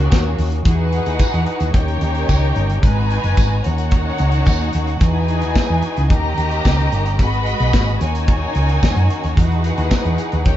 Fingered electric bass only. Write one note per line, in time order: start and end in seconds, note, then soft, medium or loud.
0.12 0.34 D#2 medium
0.39 0.61 D#2 loud
0.66 0.99 E2 medium
1.07 1.18 D#2 medium
1.34 1.45 E2 medium
1.61 1.72 D#2 medium
1.74 1.96 D#2 medium
2.02 2.24 D#2 medium
2.29 2.51 C#2 medium
2.56 2.78 G1 medium
2.84 3.17 G#1 medium
3.24 3.35 F#1 medium
3.38 3.60 G#1 medium
3.66 4.10 D#2 medium
4.20 4.42 C#2 medium
4.47 4.69 D#2 medium
4.75 4.96 D#2 medium
5.01 5.43 E2 medium
5.43 5.54 D#2 medium
5.70 5.81 E2 medium
5.98 6.08 C#2 medium
6.10 6.32 D#2 medium
6.38 6.60 D#2 medium
6.66 6.88 C#2 medium
6.92 7.20 G1 medium
7.20 7.52 G#1 loud
7.60 7.71 B1 medium
7.74 7.96 G#1 medium
8.01 8.45 D#2 medium
8.56 8.78 C#2 medium
8.83 8.94 D#2 medium
8.96 9.07 F#2 medium
9.24 9.35 D#2 medium
9.37 9.70 E2 loud
9.78 9.89 D#2 medium
10.05 10.16 E2 medium
10.33 10.44 D#2 medium
10.46 10.57 D#2 medium